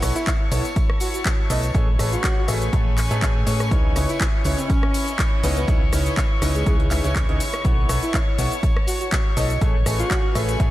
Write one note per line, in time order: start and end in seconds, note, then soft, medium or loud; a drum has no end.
0.00 0.11 B1 loud
0.00 0.14 B3 medium
0.00 2.54 E4 medium
0.00 0.14 E4 medium
0.00 0.14 A4 medium
0.00 0.14 B4 medium
0.00 2.54 C#5 medium
0.00 10.71 C#5 medium
0.00 0.14 C#5 medium
0.00 10.71 C#6 medium
0.00 cross-stick medium
0.00 open hi-hat loud
0.00 tambourine medium
0.00 shaker medium
0.09 1.74 A5 medium
0.16 0.30 E4 medium
0.16 closed hi-hat medium
0.16 tambourine medium
0.16 shaker soft
0.27 kick loud
0.27 clap loud
0.27 closed hi-hat medium
0.27 tambourine soft
0.27 shaker soft
0.51 0.60 B1 medium
0.51 0.63 B3 medium
0.51 0.63 E4 medium
0.51 0.63 A4 medium
0.51 0.63 B4 medium
0.51 0.63 C#5 medium
0.51 open hi-hat medium
0.51 tambourine loud
0.51 shaker medium
0.65 closed hi-hat medium
0.65 tambourine medium
0.65 shaker soft
0.76 kick loud
0.76 closed hi-hat medium
0.76 tambourine soft
0.76 shaker soft
0.90 cross-stick medium
1.00 1.09 F#4 medium
1.00 open hi-hat loud
1.00 tambourine medium
1.00 shaker medium
1.14 1.21 F#4 medium
1.14 closed hi-hat medium
1.14 tambourine medium
1.14 shaker soft
1.25 kick loud
1.25 clap loud
1.25 closed hi-hat medium
1.25 shaker soft
1.50 1.72 B1 medium
1.50 1.61 A3 medium
1.50 1.61 E4 medium
1.50 1.61 A4 medium
1.50 1.61 B4 medium
1.50 1.61 D#5 loud
1.50 open hi-hat medium
1.50 tambourine medium
1.50 shaker medium
1.63 closed hi-hat medium
1.63 tambourine medium
1.63 shaker soft
1.74 1.97 A1 loud
1.74 1.86 A3 medium
1.74 5.29 C#4 medium
1.74 1.86 G#4 medium
1.74 1.86 A4 medium
1.74 1.86 B4 medium
1.74 1.86 C#5 loud
1.74 kick loud
1.74 closed hi-hat medium
1.74 tambourine soft
1.74 shaker soft
1.86 4.82 B4 medium
1.99 2.14 A1 medium
1.99 2.17 A3 medium
1.99 2.17 G#4 medium
1.99 2.17 A4 medium
1.99 2.17 B4 medium
1.99 2.17 C#5 medium
1.99 cross-stick medium
1.99 open hi-hat loud
1.99 tambourine medium
1.99 shaker medium
2.13 2.48 F#4 medium
2.13 closed hi-hat medium
2.13 tambourine medium
2.13 shaker soft
2.24 kick loud
2.24 clap loud
2.24 closed hi-hat medium
2.24 tambourine soft
2.24 shaker soft
2.42 5.29 G#5 medium
2.48 2.71 A1 medium
2.48 2.66 A3 medium
2.48 2.66 G#4 medium
2.48 2.66 A4 medium
2.48 2.66 B4 medium
2.48 2.66 E5 medium
2.48 cross-stick medium
2.48 open hi-hat medium
2.48 tambourine loud
2.48 shaker medium
2.62 closed hi-hat medium
2.62 tambourine medium
2.62 shaker soft
2.73 3.08 A1 loud
2.73 2.90 A3 medium
2.73 2.90 G#4 medium
2.73 2.90 A4 medium
2.73 2.90 B4 medium
2.73 2.90 C#5 medium
2.73 kick loud
2.73 closed hi-hat medium
2.73 tambourine soft
2.73 shaker soft
2.97 clap medium
2.97 open hi-hat loud
2.97 tambourine medium
2.97 shaker medium
3.11 3.44 A2 loud
3.11 3.44 A3 medium
3.11 3.44 G#4 medium
3.11 3.44 A4 medium
3.11 3.44 B4 medium
3.11 3.44 C#5 loud
3.11 closed hi-hat medium
3.11 tambourine medium
3.11 shaker soft
3.22 kick loud
3.22 clap loud
3.22 closed hi-hat medium
3.22 tambourine soft
3.22 shaker soft
3.46 3.69 A2 medium
3.46 3.58 C#4 medium
3.46 3.58 G#4 medium
3.46 3.58 A4 medium
3.46 3.58 B4 medium
3.46 3.58 C#5 medium
3.46 open hi-hat loud
3.46 tambourine loud
3.46 shaker medium
3.60 cross-stick medium
3.60 closed hi-hat medium
3.60 tambourine medium
3.60 shaker soft
3.71 3.94 C#2 loud
3.71 3.93 C#3 medium
3.71 3.93 D#4 medium
3.71 10.41 E4 medium
3.71 3.93 E4 medium
3.71 3.93 B4 medium
3.71 3.93 C#5 loud
3.71 kick loud
3.71 closed hi-hat medium
3.71 tambourine soft
3.71 shaker soft
3.96 4.05 C#2 loud
3.96 4.07 C#3 medium
3.96 4.07 D#4 medium
3.96 4.07 E4 medium
3.96 4.07 B4 medium
3.96 4.07 C#5 medium
3.96 cross-stick medium
3.96 open hi-hat loud
3.96 tambourine medium
3.96 shaker medium
4.00 8.44 D#5 medium
4.09 4.24 E4 medium
4.09 closed hi-hat medium
4.09 tambourine medium
4.09 shaker soft
4.20 kick loud
4.20 clap loud
4.20 closed hi-hat medium
4.20 shaker soft
4.26 8.44 B5 medium
4.44 4.54 C#2 loud
4.44 4.56 C#3 medium
4.44 4.57 D#4 medium
4.44 4.57 E4 medium
4.44 4.57 B4 medium
4.44 4.57 C#5 loud
4.44 open hi-hat medium
4.44 tambourine medium
4.44 shaker medium
4.58 5.27 C#4 medium
4.58 closed hi-hat medium
4.58 tambourine medium
4.58 shaker soft
4.70 kick loud
4.70 closed hi-hat medium
4.70 tambourine soft
4.70 shaker soft
4.83 cross-stick medium
4.94 open hi-hat loud
4.94 tambourine medium
4.94 shaker medium
5.08 closed hi-hat medium
5.08 tambourine soft
5.08 shaker soft
5.19 kick loud
5.19 clap loud
5.19 closed hi-hat medium
5.19 tambourine soft
5.19 shaker soft
5.43 5.66 C#2 medium
5.43 5.55 C#3 loud
5.43 5.52 B3 medium
5.43 5.55 D#4 medium
5.43 5.55 E4 medium
5.43 5.55 B4 medium
5.43 5.55 D#5 loud
5.43 open hi-hat loud
5.43 tambourine loud
5.43 shaker medium
5.57 5.64 B3 medium
5.57 closed hi-hat medium
5.57 tambourine medium
5.57 shaker soft
5.68 5.79 C#3 medium
5.68 5.79 D#4 medium
5.68 5.79 E4 medium
5.68 5.79 B4 medium
5.68 5.79 C#5 loud
5.68 kick loud
5.68 closed hi-hat medium
5.68 tambourine soft
5.68 shaker soft
5.92 6.08 C#2 medium
5.92 6.10 C#3 medium
5.92 6.10 D#4 medium
5.92 6.10 E4 medium
5.92 6.10 B4 medium
5.92 6.10 C#5 medium
5.92 cross-stick medium
5.92 open hi-hat loud
5.92 tambourine medium
5.92 shaker medium
6.06 closed hi-hat soft
6.06 tambourine medium
6.06 shaker soft
6.17 kick loud
6.17 clap loud
6.17 closed hi-hat medium
6.17 shaker soft
6.42 6.64 C#2 medium
6.42 6.59 C#3 medium
6.42 6.59 D#4 medium
6.42 6.59 E4 medium
6.42 6.59 B4 medium
6.42 6.59 D#5 medium
6.42 cross-stick medium
6.42 open hi-hat medium
6.42 tambourine loud
6.42 shaker medium
6.55 6.62 G#3 medium
6.55 closed hi-hat soft
6.55 tambourine medium
6.55 shaker soft
6.66 6.84 C#3 medium
6.66 6.75 G#3 medium
6.66 6.84 D#4 medium
6.66 6.84 E4 medium
6.66 6.84 B4 medium
6.66 6.84 C#5 medium
6.66 kick loud
6.66 closed hi-hat medium
6.66 tambourine soft
6.66 shaker soft
6.80 closed hi-hat soft
6.90 7.02 C#2 medium
6.90 7.02 C#3 medium
6.90 7.02 D#4 medium
6.90 7.02 E4 medium
6.90 7.02 B4 medium
6.90 7.02 E5 medium
6.90 clap medium
6.90 open hi-hat loud
6.90 tambourine medium
6.90 shaker medium
7.04 7.26 C#2 loud
7.04 7.20 C#3 medium
7.04 7.20 D#4 medium
7.04 7.20 E4 medium
7.04 7.20 B4 medium
7.04 7.20 C#5 medium
7.04 closed hi-hat medium
7.04 tambourine medium
7.04 shaker soft
7.16 kick loud
7.16 clap loud
7.16 closed hi-hat medium
7.16 shaker soft
7.29 7.36 C#2 medium
7.29 7.38 C#3 medium
7.29 7.38 D#4 medium
7.29 7.39 E4 medium
7.29 7.39 B4 medium
7.29 7.38 D#5 medium
7.29 closed hi-hat soft
7.40 open hi-hat medium
7.40 tambourine loud
7.40 shaker medium
7.53 cross-stick medium
7.53 closed hi-hat soft
7.53 tambourine medium
7.53 shaker soft
7.64 7.87 B1 medium
7.64 7.87 B3 medium
7.64 7.87 E4 medium
7.64 7.87 A4 medium
7.64 7.87 B4 medium
7.64 7.87 C#5 loud
7.64 kick loud
7.64 closed hi-hat medium
7.64 tambourine soft
7.64 shaker soft
7.89 7.98 B1 loud
7.89 8.01 B3 medium
7.89 8.01 E4 medium
7.89 8.01 A4 medium
7.89 8.01 B4 medium
7.89 8.01 C#5 medium
7.89 10.41 C#5 medium
7.89 9.62 A5 medium
7.89 cross-stick medium
7.89 open hi-hat loud
7.89 tambourine medium
7.89 shaker medium
8.03 8.17 E4 medium
8.03 closed hi-hat soft
8.03 tambourine soft
8.03 shaker soft
8.14 kick loud
8.14 clap loud
8.14 closed hi-hat medium
8.14 tambourine soft
8.14 shaker soft
8.38 8.47 B1 medium
8.38 8.50 B3 medium
8.38 8.50 E4 medium
8.38 8.50 A4 medium
8.38 8.50 B4 medium
8.38 8.50 C#5 medium
8.38 open hi-hat medium
8.38 tambourine medium
8.38 shaker medium
8.51 closed hi-hat medium
8.51 tambourine soft
8.51 shaker soft
8.63 kick loud
8.63 closed hi-hat medium
8.63 tambourine soft
8.63 shaker soft
8.77 cross-stick medium
8.87 8.96 F#4 medium
8.87 open hi-hat loud
8.87 tambourine medium
8.87 shaker medium
9.01 9.08 F#4 medium
9.01 closed hi-hat medium
9.01 tambourine soft
9.01 shaker soft
9.12 kick loud
9.12 clap loud
9.12 closed hi-hat medium
9.12 tambourine soft
9.12 shaker soft
9.37 9.59 B1 medium
9.37 9.48 A3 loud
9.37 9.48 E4 medium
9.37 9.48 A4 medium
9.37 9.48 B4 medium
9.37 9.48 D#5 loud
9.37 open hi-hat medium
9.37 tambourine medium
9.37 shaker medium
9.50 closed hi-hat soft
9.50 tambourine medium
9.50 shaker soft
9.61 9.73 A3 medium
9.61 10.71 C#4 medium
9.61 9.73 G#4 medium
9.61 9.73 A4 medium
9.61 9.73 B4 medium
9.61 9.73 C#5 loud
9.61 kick loud
9.61 closed hi-hat medium
9.61 tambourine soft
9.61 shaker soft
9.86 10.01 A1 loud
9.86 10.04 A3 medium
9.86 10.04 G#4 medium
9.86 10.04 A4 medium
9.86 10.04 B4 medium
9.86 10.71 B4 medium
9.86 10.04 C#5 medium
9.86 cross-stick medium
9.86 open hi-hat loud
9.86 tambourine medium
9.86 shaker medium
9.99 10.35 F#4 loud
9.99 10.71 G#5 medium
9.99 closed hi-hat medium
9.99 tambourine soft
9.99 shaker soft
10.11 kick loud
10.11 clap loud
10.11 closed hi-hat medium
10.11 tambourine soft
10.11 shaker soft
10.35 10.58 A1 medium
10.35 10.53 A3 medium
10.35 10.53 G#4 medium
10.35 10.53 A4 medium
10.35 10.53 B4 medium
10.35 10.53 E5 medium
10.35 cross-stick medium
10.35 open hi-hat medium
10.35 tambourine medium
10.35 shaker medium
10.49 closed hi-hat medium
10.49 tambourine soft
10.49 shaker soft
10.60 10.71 A1 medium
10.60 10.71 A3 medium
10.60 10.71 G#4 medium
10.60 10.71 A4 medium
10.60 10.71 B4 medium
10.60 10.71 C#5 loud
10.60 kick loud
10.60 closed hi-hat medium
10.60 shaker soft